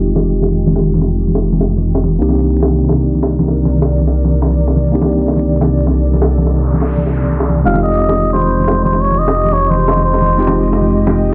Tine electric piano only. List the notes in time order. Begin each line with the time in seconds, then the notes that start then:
Already playing: G#3 C4 D#4 F4 G4
2.19 A#3 C4 D4 D#4 G4
4.92 A#3 C4 D4 D#4 G4
7.64 G#3 C4 D#4 F4 G4
10.37 G#3 C4 D#4 F4 G4